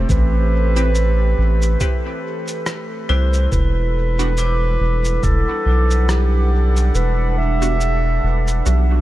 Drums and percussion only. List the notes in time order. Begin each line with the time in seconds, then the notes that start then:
0.09 kick, cabasa
0.76 cabasa
0.95 cabasa
1.62 cabasa
1.80 kick, cabasa
2.48 cabasa
2.66 cross-stick, cabasa
3.33 cabasa
3.52 kick, cabasa
4.19 cabasa
4.37 cabasa
5.05 cabasa
5.23 kick, cabasa
5.91 cabasa
6.09 cross-stick, cabasa
6.77 cabasa
6.95 cabasa
7.62 cabasa
7.81 cabasa
8.48 cabasa
8.66 cabasa